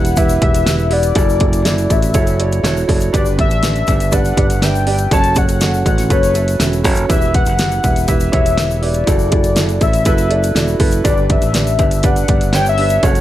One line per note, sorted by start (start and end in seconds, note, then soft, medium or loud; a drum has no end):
0.00 0.38 E1 medium
0.00 1.17 E3 medium
0.00 0.17 E4 medium
0.00 0.18 G4 medium
0.00 0.18 B4 medium
0.00 1.16 D5 medium
0.00 0.42 E5 loud
0.00 0.19 F#5 loud
0.00 1.18 A5 medium
0.05 closed hi-hat soft
0.05 shaker soft
0.16 0.36 E4 medium
0.16 0.37 G4 medium
0.16 0.36 B4 medium
0.16 0.42 E5 loud
0.16 0.37 F#5 medium
0.16 kick medium
0.16 closed hi-hat medium
0.16 shaker medium
0.29 closed hi-hat soft
0.29 shaker medium
0.42 1.12 E1 medium
0.42 0.61 E4 medium
0.42 0.61 G4 medium
0.42 0.61 B4 medium
0.42 0.61 E5 medium
0.42 0.94 E5 loud
0.42 kick medium
0.42 closed hi-hat medium
0.54 closed hi-hat soft
0.54 shaker soft
0.66 0.85 E4 medium
0.66 0.86 G4 medium
0.66 0.86 B4 medium
0.66 0.86 E5 medium
0.66 snare loud
0.66 closed hi-hat medium
0.66 shaker medium
0.79 shaker soft
0.90 1.10 E4 medium
0.90 1.10 G4 medium
0.90 1.10 B4 medium
0.90 1.93 D5 loud
0.90 1.10 F#5 medium
0.90 open hi-hat medium
1.03 closed hi-hat soft
1.03 shaker medium
1.15 1.86 F#1 loud
1.15 1.35 E4 medium
1.15 1.35 F#4 medium
1.15 1.35 A4 medium
1.15 1.35 D5 loud
1.15 kick loud
1.15 closed hi-hat medium
1.15 shaker medium
1.29 shaker soft
1.40 1.60 E4 medium
1.40 1.60 F#4 medium
1.40 1.60 A4 medium
1.40 1.60 D5 medium
1.40 kick medium
1.40 closed hi-hat medium
1.53 closed hi-hat soft
1.53 shaker soft
1.64 1.84 E4 medium
1.64 1.84 F#4 medium
1.64 1.84 A4 medium
1.64 1.85 D5 medium
1.64 snare loud
1.64 closed hi-hat medium
1.64 shaker medium
1.78 closed hi-hat soft
1.78 shaker soft
1.90 2.13 A1 medium
1.90 2.09 E4 medium
1.90 2.09 F#4 medium
1.90 2.10 A4 medium
1.90 2.10 D5 medium
1.90 2.90 E5 medium
1.90 kick medium
1.90 closed hi-hat medium
1.90 shaker soft
2.02 closed hi-hat soft
2.02 shaker medium
2.14 2.60 F#1 loud
2.14 2.34 E4 medium
2.14 2.34 F#4 medium
2.14 2.34 A4 medium
2.14 2.34 C#5 medium
2.14 kick medium
2.14 closed hi-hat medium
2.14 shaker medium
2.27 closed hi-hat soft
2.27 shaker medium
2.39 2.59 E4 medium
2.39 2.59 F#4 medium
2.39 2.59 A4 medium
2.39 2.59 D5 medium
2.39 closed hi-hat medium
2.52 closed hi-hat medium
2.52 shaker soft
2.63 2.87 E1 medium
2.63 2.83 E4 medium
2.63 2.83 F#4 medium
2.63 2.83 A4 medium
2.63 2.83 C#5 medium
2.63 snare loud
2.63 closed hi-hat medium
2.63 shaker medium
2.77 shaker soft
2.88 3.12 F#1 medium
2.88 3.07 E4 medium
2.88 3.08 F#4 medium
2.88 3.08 A4 medium
2.88 3.08 D5 medium
2.88 kick medium
2.88 open hi-hat medium
3.00 closed hi-hat soft
3.00 shaker medium
3.13 3.50 G1 loud
3.13 3.84 G2 medium
3.13 3.32 D4 medium
3.13 3.33 G4 medium
3.13 3.33 B4 medium
3.13 3.33 D5 loud
3.13 3.26 D5 medium
3.13 kick loud
3.13 closed hi-hat medium
3.13 shaker medium
3.25 shaker soft
3.38 3.57 D4 medium
3.38 3.57 G4 medium
3.38 3.57 B4 medium
3.38 3.58 D5 medium
3.38 4.16 E5 medium
3.38 kick medium
3.38 closed hi-hat medium
3.50 3.85 A1 medium
3.50 closed hi-hat soft
3.50 shaker soft
3.63 3.82 D4 medium
3.63 3.82 G4 medium
3.63 3.82 B4 medium
3.63 3.82 D5 medium
3.63 snare loud
3.63 closed hi-hat medium
3.63 shaker medium
3.76 closed hi-hat soft
3.76 shaker soft
3.87 4.34 G1 medium
3.87 4.07 D4 medium
3.87 4.07 G4 medium
3.87 4.07 B4 medium
3.87 4.07 D5 medium
3.87 kick medium
3.87 closed hi-hat medium
3.87 shaker soft
4.00 closed hi-hat soft
4.00 shaker soft
4.12 4.31 D4 medium
4.12 4.31 G4 medium
4.12 4.31 B4 medium
4.12 4.32 D5 loud
4.12 4.65 F#5 loud
4.12 kick medium
4.12 closed hi-hat medium
4.12 shaker medium
4.25 closed hi-hat soft
4.25 shaker medium
4.36 5.08 G1 medium
4.36 4.56 D4 medium
4.36 4.56 G4 medium
4.36 4.56 B4 medium
4.36 4.56 D5 medium
4.36 kick medium
4.36 closed hi-hat medium
4.50 closed hi-hat medium
4.50 shaker soft
4.62 4.81 D4 medium
4.62 4.81 G4 medium
4.62 4.81 B4 medium
4.62 4.81 E5 medium
4.62 5.12 G5 loud
4.62 snare loud
4.62 closed hi-hat medium
4.62 shaker medium
4.75 shaker soft
4.87 5.06 D4 medium
4.87 5.06 G4 medium
4.87 5.06 B4 medium
4.87 5.06 D5 medium
4.87 open hi-hat medium
4.98 closed hi-hat soft
4.98 shaker medium
5.11 5.82 F#1 loud
5.11 5.31 C#4 medium
5.11 5.31 F#4 medium
5.11 5.31 A4 medium
5.11 5.31 C#5 loud
5.11 5.40 A5 loud
5.11 kick loud
5.11 closed hi-hat medium
5.11 shaker medium
5.24 closed hi-hat soft
5.24 shaker soft
5.35 5.55 C#4 medium
5.35 5.55 F#4 medium
5.35 5.56 A4 medium
5.35 5.56 C#5 medium
5.35 5.86 F#5 loud
5.35 kick medium
5.35 closed hi-hat medium
5.35 shaker medium
5.49 closed hi-hat soft
5.49 shaker soft
5.61 5.80 C#4 medium
5.61 5.80 F#4 medium
5.61 5.80 A4 medium
5.61 5.80 C#5 medium
5.61 snare loud
5.61 closed hi-hat medium
5.61 shaker medium
5.74 shaker soft
5.86 6.09 A1 medium
5.86 6.05 C#4 medium
5.86 6.05 F#4 medium
5.86 6.05 A4 medium
5.86 6.05 C#5 medium
5.86 6.09 F#5 medium
5.86 kick medium
5.86 closed hi-hat medium
5.86 shaker soft
5.98 snare soft
5.98 closed hi-hat soft
5.98 shaker soft
6.10 6.56 F#1 medium
6.10 6.29 C#4 medium
6.10 6.29 F#4 medium
6.10 6.29 A4 medium
6.10 6.30 B4 loud
6.10 6.81 C#5 medium
6.10 kick medium
6.10 closed hi-hat medium
6.10 shaker medium
6.23 closed hi-hat soft
6.23 shaker medium
6.34 6.54 C#4 medium
6.34 6.54 F#4 medium
6.34 6.54 A4 medium
6.34 6.54 E5 medium
6.34 closed hi-hat medium
6.34 shaker medium
6.48 closed hi-hat medium
6.48 shaker soft
6.59 6.84 E1 medium
6.59 6.79 C#4 medium
6.59 6.79 F#4 medium
6.59 6.79 A4 medium
6.59 6.79 E5 medium
6.59 snare loud
6.59 closed hi-hat medium
6.59 shaker medium
6.73 closed hi-hat soft
6.73 shaker soft
6.83 7.07 F#1 medium
6.83 7.03 C#4 medium
6.83 7.03 F#4 medium
6.83 7.04 A4 medium
6.83 7.04 C#5 medium
6.83 kick medium
6.83 open hi-hat medium
6.83 shaker soft
6.95 closed hi-hat soft
6.95 shaker medium
7.09 7.44 E1 loud
7.09 7.79 E3 medium
7.09 7.28 E4 medium
7.09 7.28 G4 medium
7.09 7.28 B4 medium
7.09 7.29 E5 loud
7.09 7.33 E5 loud
7.09 kick loud
7.09 closed hi-hat medium
7.09 shaker medium
7.21 shaker soft
7.34 7.53 E4 medium
7.34 7.53 G4 medium
7.34 7.53 B4 medium
7.34 7.54 E5 medium
7.34 8.10 F#5 loud
7.34 kick medium
7.34 closed hi-hat medium
7.46 7.81 F#1 medium
7.46 closed hi-hat soft
7.46 shaker medium
7.59 7.78 E4 medium
7.59 7.78 G4 medium
7.59 7.78 B4 medium
7.59 7.78 F#5 medium
7.59 snare loud
7.59 closed hi-hat medium
7.59 shaker medium
7.71 closed hi-hat soft
7.71 shaker soft
7.84 8.30 E1 medium
7.84 8.03 E4 medium
7.84 8.03 G4 medium
7.84 8.03 B4 medium
7.84 8.03 E5 medium
7.84 kick medium
7.84 closed hi-hat medium
7.84 shaker medium
7.96 closed hi-hat soft
7.96 shaker soft
8.08 8.27 E4 medium
8.08 8.27 G4 medium
8.08 8.27 B4 medium
8.08 8.32 E5 loud
8.08 8.28 E5 loud
8.08 kick medium
8.08 closed hi-hat medium
8.08 shaker medium
8.20 closed hi-hat soft
8.20 shaker medium
8.32 9.04 E1 medium
8.32 8.52 E4 medium
8.32 8.52 G4 medium
8.32 8.52 B4 medium
8.32 8.52 C#5 medium
8.32 8.84 E5 loud
8.32 kick medium
8.32 closed hi-hat medium
8.46 closed hi-hat soft
8.46 shaker soft
8.57 8.77 E4 medium
8.57 8.77 G4 medium
8.57 8.77 B4 medium
8.57 8.77 E5 medium
8.57 snare loud
8.57 closed hi-hat medium
8.57 shaker medium
8.71 shaker soft
8.82 9.01 E4 medium
8.82 9.02 G4 medium
8.82 9.02 B4 medium
8.82 9.81 D5 loud
8.82 9.02 E5 medium
8.82 open hi-hat medium
8.94 closed hi-hat soft
8.94 shaker soft
9.06 9.78 F#1 medium
9.06 9.26 E4 medium
9.06 9.26 F#4 medium
9.06 9.26 A4 medium
9.06 9.26 D5 loud
9.06 kick medium
9.06 closed hi-hat medium
9.06 shaker medium
9.19 shaker soft
9.31 9.51 E4 medium
9.31 9.51 F#4 medium
9.31 9.51 A4 medium
9.31 9.51 D5 medium
9.31 kick medium
9.31 closed hi-hat medium
9.44 closed hi-hat soft
9.44 shaker soft
9.55 9.75 E4 medium
9.55 9.75 F#4 medium
9.55 9.76 A4 medium
9.55 9.76 D5 medium
9.55 snare loud
9.55 closed hi-hat medium
9.55 shaker medium
9.69 closed hi-hat soft
9.69 shaker soft
9.81 10.04 A1 medium
9.81 10.00 E4 medium
9.81 10.00 F#4 medium
9.81 10.00 A4 medium
9.81 10.01 D5 medium
9.81 10.77 E5 medium
9.81 kick medium
9.81 closed hi-hat medium
9.81 shaker soft
9.93 closed hi-hat soft
9.93 shaker medium
10.05 10.52 F#1 medium
10.05 10.25 E4 medium
10.05 10.25 F#4 medium
10.05 10.25 A4 medium
10.05 10.25 B4 loud
10.05 kick medium
10.05 closed hi-hat medium
10.05 shaker medium
10.18 closed hi-hat soft
10.18 shaker medium
10.30 10.50 E4 medium
10.30 10.50 F#4 medium
10.30 10.50 A4 medium
10.30 10.50 D5 medium
10.30 closed hi-hat medium
10.43 closed hi-hat soft
10.43 shaker soft
10.55 10.79 E1 medium
10.55 10.74 E4 medium
10.55 10.75 F#4 medium
10.55 10.75 A4 medium
10.55 10.75 D5 medium
10.55 snare loud
10.55 closed hi-hat medium
10.55 shaker medium
10.68 shaker soft
10.79 11.03 F#1 medium
10.79 10.99 E4 medium
10.79 10.99 F#4 medium
10.79 11.00 A4 medium
10.79 10.99 B4 medium
10.79 kick medium
10.79 open hi-hat medium
10.91 closed hi-hat soft
10.91 shaker medium
11.04 11.40 G1 loud
11.04 11.75 G2 medium
11.04 11.24 D4 medium
11.04 11.24 G4 medium
11.04 11.24 B4 medium
11.04 11.24 D5 loud
11.04 11.29 D5 medium
11.04 kick loud
11.04 closed hi-hat medium
11.04 shaker medium
11.17 shaker soft
11.29 11.49 D4 medium
11.29 11.49 G4 medium
11.29 11.49 B4 medium
11.29 11.49 D5 medium
11.29 12.07 E5 medium
11.29 kick medium
11.29 closed hi-hat medium
11.42 11.79 A1 medium
11.42 closed hi-hat soft
11.42 shaker soft
11.53 11.73 D4 medium
11.53 11.73 G4 medium
11.53 11.73 B4 medium
11.53 11.74 D5 medium
11.53 snare loud
11.53 closed hi-hat medium
11.53 shaker medium
11.67 closed hi-hat soft
11.67 shaker soft
11.79 12.25 G1 medium
11.79 11.98 D4 medium
11.79 11.98 G4 medium
11.79 11.99 B4 medium
11.79 11.99 E5 medium
11.79 kick medium
11.79 closed hi-hat medium
11.79 shaker soft
11.91 closed hi-hat soft
11.91 shaker medium
12.03 12.23 D4 medium
12.03 12.23 G4 medium
12.03 12.23 B4 medium
12.03 12.24 D5 loud
12.03 12.54 F#5 loud
12.03 kick medium
12.03 closed hi-hat medium
12.03 shaker medium
12.16 closed hi-hat soft
12.16 shaker medium
12.28 12.99 G1 medium
12.28 12.48 D4 medium
12.28 12.48 G4 medium
12.28 12.48 B4 medium
12.28 12.48 D5 medium
12.28 kick medium
12.28 closed hi-hat medium
12.41 closed hi-hat soft
12.41 shaker soft
12.53 12.73 D4 medium
12.53 12.73 G4 medium
12.53 12.73 B4 medium
12.53 12.73 C#5 medium
12.53 12.66 G5 loud
12.53 snare loud
12.53 closed hi-hat medium
12.53 shaker medium
12.66 13.08 E5 loud
12.66 shaker soft
12.78 12.98 D4 medium
12.78 12.98 G4 medium
12.78 12.98 B4 medium
12.78 12.98 D5 medium
12.78 open hi-hat medium
12.89 closed hi-hat soft
12.89 shaker medium
13.03 13.21 F#1 loud
13.03 13.21 C#4 medium
13.03 13.21 F#4 medium
13.03 13.21 A4 medium
13.03 13.21 C#5 loud
13.03 13.21 F#5 loud
13.03 kick loud
13.03 closed hi-hat medium
13.03 shaker medium
13.15 closed hi-hat soft
13.15 shaker soft